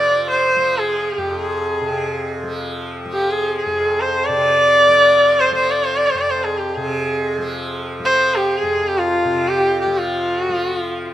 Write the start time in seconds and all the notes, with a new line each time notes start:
Already playing: F2 C3 F3 D5
0.30 C5
0.56 F3
0.77 G#4
1.13 G4
1.18 F2
1.30 G4
1.42 G#4
1.81 C3
2.43 F3
3.05 F3
3.13 G4
3.31 G#4
3.58 G#4
3.66 F2
4.00 C5
4.25 C3 D5
4.89 F3
5.40 C5
5.51 F3 C5
5.71 D5
5.84 C5
5.96 D5
6.07 C5
6.14 F2 D5
6.30 C5
6.44 G#4
6.58 G4
6.76 C3 G#4
7.38 F3
8.00 F3
8.05 C5
8.37 G4
8.57 G#4
8.63 F2
8.87 G4
8.98 F4
9.25 C3
9.48 G4
9.81 G4
9.86 F3
9.98 F4
10.41 F#4
10.49 F3 F4
10.64 F#4
10.76 F4